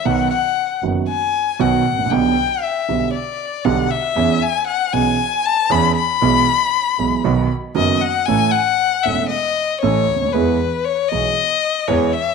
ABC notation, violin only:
X:1
M:4/4
L:1/8
Q:1/4=117
K:E
V:1 name="Violin"
f f2 z g2 f2 | =g2 e2 =d2 f e- | e g f g2 a b b- | b4- b z d f |
g f2 e d2 c2 | B2 c d3 c e |]